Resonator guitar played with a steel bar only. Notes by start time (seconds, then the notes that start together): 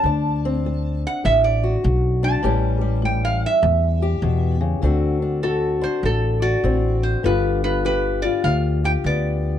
Already playing: A5
1.07 F#5
1.25 E5
1.44 D5
2.24 A5
3.05 G5
3.25 F5
3.46 E5
5.43 A4
5.84 C5
6.06 A4
6.42 D5
7.03 C5
7.26 B4
7.64 B4
7.86 B4
8.22 D5
8.44 F5
8.85 G5
9.06 D5